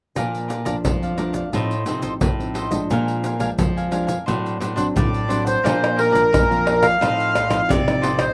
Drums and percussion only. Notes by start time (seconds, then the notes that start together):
0.16 pandeiro, shaker, surdo
0.35 pandeiro, shaker
0.50 pandeiro, shaker
0.66 pandeiro, shaker, surdo
0.85 pandeiro, shaker, surdo
1.03 pandeiro, shaker
1.18 pandeiro, shaker
1.34 pandeiro, shaker, surdo
1.53 pandeiro, shaker, surdo
1.71 pandeiro, shaker
1.86 pandeiro, shaker
2.02 pandeiro, shaker, surdo
2.21 pandeiro, shaker, surdo
2.40 pandeiro, shaker
2.55 pandeiro, shaker
2.71 pandeiro, shaker, surdo
2.90 pandeiro, shaker, surdo
3.08 pandeiro, shaker
3.24 pandeiro, shaker
3.40 pandeiro, shaker, surdo
3.58 pandeiro, shaker, surdo
3.77 pandeiro, shaker
3.92 pandeiro, shaker
4.08 pandeiro, shaker, surdo
4.28 pandeiro, shaker, surdo
4.46 pandeiro, shaker
4.61 pandeiro, shaker
4.77 pandeiro, shaker, surdo
4.96 pandeiro, shaker, surdo
5.14 pandeiro, shaker
5.30 pandeiro, shaker
5.47 pandeiro, shaker, surdo
5.66 pandeiro, tamborim, shaker, surdo
5.84 pandeiro, tamborim, shaker
5.99 pandeiro
6.15 pandeiro, shaker, surdo
6.34 pandeiro, tamborim, shaker, surdo
6.52 pandeiro, shaker
6.67 pandeiro, tamborim
6.83 pandeiro, tamborim, shaker, surdo
7.02 pandeiro, tamborim, shaker, surdo
7.20 pandeiro, shaker
7.35 pandeiro, tamborim, shaker, surdo
7.50 pandeiro, tamborim, shaker, surdo
7.70 pandeiro, shaker, surdo
7.88 pandeiro, tamborim, shaker
8.03 pandeiro, shaker
8.19 pandeiro, tamborim, shaker, surdo